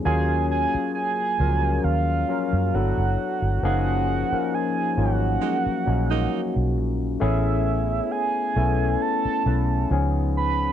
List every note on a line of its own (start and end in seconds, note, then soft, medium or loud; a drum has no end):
0.05 0.65 D#2 medium
0.05 1.07 F#3 medium
0.05 1.07 A#3 medium
0.05 1.07 C#4 medium
0.05 1.07 F4 medium
0.05 1.08 G#4 medium
0.05 0.46 G#5 loud
0.51 0.92 G#5 loud
0.75 muted fingered electric bass stroke soft
0.95 1.86 G#5 loud
1.39 1.78 C#2 medium
1.39 1.45 F3 medium
1.39 2.08 A#3 medium
1.39 2.08 C#4 medium
1.39 2.08 F4 medium
1.39 2.09 A#4 medium
1.46 2.11 F#3 medium
1.84 2.23 D#2 medium
1.84 2.76 F5 loud
2.28 2.73 F#3 medium
2.28 2.73 A#3 soft
2.28 2.73 C#4 medium
2.28 2.74 F4 medium
2.28 2.74 A#4 medium
2.53 2.71 F#2 medium
2.74 2.94 G1 medium
2.74 3.46 F#3 medium
2.74 3.46 B3 medium
2.74 3.46 D4 medium
2.74 3.47 E4 medium
2.74 3.47 A4 medium
2.74 3.63 F#5 loud
2.97 3.15 F#1 medium
3.42 3.60 G1 medium
3.63 4.22 F#1 medium
3.63 4.14 F3 medium
3.63 4.14 A#3 medium
3.63 4.14 C#4 medium
3.63 4.15 D#4 medium
3.63 4.15 G#4 loud
3.63 4.56 F#5 loud
4.31 4.81 F3 medium
4.31 4.82 A#3 medium
4.31 4.82 C#4 medium
4.31 4.82 D#4 medium
4.31 4.82 A#4 medium
4.31 muted fingered electric bass stroke soft
4.54 5.01 G#5 loud
4.97 5.36 G#1 medium
4.97 5.66 F#3 medium
4.97 5.66 A#3 medium
4.97 5.66 C#4 medium
4.97 5.66 D#4 medium
4.97 5.04 F4 medium
4.97 6.77 F#5 medium
5.05 5.70 F#4 medium
5.41 5.57 G#3 medium
5.41 5.57 A#3 medium
5.41 5.57 D#4 medium
5.66 muted fingered electric bass stroke soft
5.86 6.26 A#1 medium
5.86 6.88 F#3 medium
5.86 6.89 A#3 medium
5.86 6.89 C#4 medium
5.86 6.89 D#4 medium
5.86 6.89 F#4 medium
6.10 6.40 G#3 medium
6.10 6.40 A#3 medium
6.10 6.40 D#4 medium
6.56 6.77 B1 medium
6.77 7.16 A#1 medium
7.20 7.99 A1 medium
7.20 8.22 A3 medium
7.20 8.23 B3 medium
7.20 8.23 C#4 medium
7.20 8.23 E4 medium
7.20 8.23 G#4 medium
7.20 8.13 E5 medium
8.12 9.03 G#5 loud
8.56 8.95 B1 medium
8.56 9.24 A3 medium
8.56 9.25 B3 medium
8.56 9.25 C#4 medium
8.56 9.25 E4 medium
8.56 9.25 A4 medium
9.02 9.90 A5 loud
9.25 muted fingered electric bass stroke soft
9.46 9.84 B1 medium
9.46 9.90 A3 medium
9.46 9.90 B3 medium
9.46 9.90 C#4 medium
9.46 9.90 E4 soft
9.46 9.90 B4 medium
9.91 10.68 C#2 medium
9.91 10.63 F3 medium
9.91 10.63 B3 medium
9.91 10.63 C#4 medium
9.91 10.63 D#4 medium
9.91 10.63 G#4 medium
10.37 10.72 B5 medium